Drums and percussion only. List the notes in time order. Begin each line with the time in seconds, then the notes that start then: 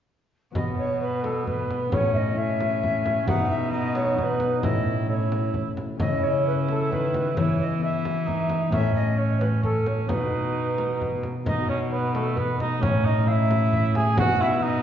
0.55 frame drum
1.24 frame drum
1.47 frame drum
1.71 frame drum
1.92 frame drum
2.60 frame drum
2.83 frame drum
3.06 frame drum
3.28 frame drum
3.95 frame drum
4.18 frame drum
4.40 frame drum
4.63 frame drum
5.32 frame drum
5.54 frame drum
5.77 frame drum
6.00 frame drum
6.69 frame drum
6.92 frame drum
7.14 frame drum
7.37 frame drum
8.05 frame drum
8.28 frame drum
8.50 frame drum
8.72 frame drum
9.41 frame drum
9.63 frame drum
9.86 frame drum
10.09 frame drum
10.78 frame drum
11.01 frame drum
11.23 frame drum
11.46 frame drum
12.15 frame drum
12.37 frame drum
12.60 frame drum
12.83 frame drum
13.51 frame drum
13.73 frame drum
13.95 frame drum
14.17 frame drum